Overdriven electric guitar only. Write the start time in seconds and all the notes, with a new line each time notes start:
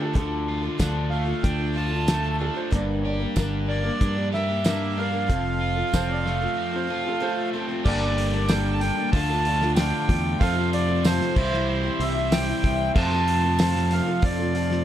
Already playing: A3 D4 F4
0.16 D3
0.48 F4
0.81 D4
1.13 A3
1.44 D4
1.76 F4
2.09 A3
2.41 D4
2.72 G2
3.05 G4
3.36 D4
3.68 A#3
4.01 D4
4.32 G4
4.64 A#3
4.97 D4
5.29 F2
5.61 F4
5.93 C4
6.26 A3
6.57 C4
6.90 F4
7.22 A3
7.54 C4
7.84 G3 A#3 D4 G4
9.12 D3 A3 D4 F4
10.40 F2 C3 F3 A3 C4 F4
11.35 C3 E3 G3 C4 E4
12.95 F2 C3 F3 A3 C4 F4